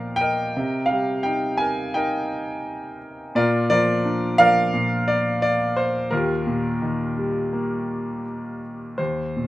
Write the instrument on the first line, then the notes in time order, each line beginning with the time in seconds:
grand piano
Already playing: A#2 F3 D4 A#4 D5 D#5 F5 G5
0.16 G5
0.21 A#4 D#5
0.57 C3
0.86 F5
0.91 G3
1.23 D#4 G5
1.57 A#4 G#5
1.94 D#4 A#4 D#5 G5
3.35 A#2 F4 A#4 D5
3.70 F3 F4 A#4 D5
4.05 D4
4.38 F3 A#4 D5 F5
4.74 A#2
5.08 D5
5.42 D5
5.77 C5
6.11 D#2 F4 G4 A#4
6.47 A#2
6.82 D#3
7.18 G3
7.53 A#3
8.98 D#2 C5
9.36 A#2